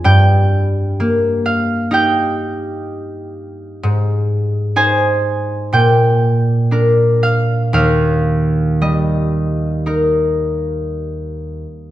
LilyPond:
\new Staff \with { instrumentName = "Harp" } { \time 4/4 \key ees \major \tempo 4 = 62 << { <g'' bes''>4. f''8 g''2 | r4 aes''4 g''4. f''8 | f''4 ees''2. | } \\ { <g, bes>4 bes4 <ees' g'>2 | aes,4 <ees' c''>4 bes,4 <d' bes'>4 | ees,4 g4 <ees' bes'>2 | } >> }